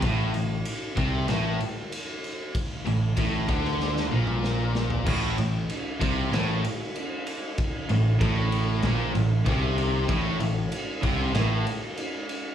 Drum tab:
CC |----------------|----------------|x---------------|----------------|
RD |x-x-x-x-x-x-x-x-|x-x-x-x---------|--x-x-x-x-x-x-x-|x-x-x-x-x-x-x-x-|
SD |--------o-------|-------ooo--o-o-|--------o-------|--------o-------|
T2 |----------------|-----------o----|----------------|----------------|
FT |----------------|---------------o|----------------|----------------|
BD |o-----o---------|o---o-o---------|o-----o---------|o---o---o---o---|

CC |----------------|
RD |x-x-x-x-x-x-x-x-|
SD |--------o-------|
T2 |----------------|
FT |----------------|
BD |o-----o---------|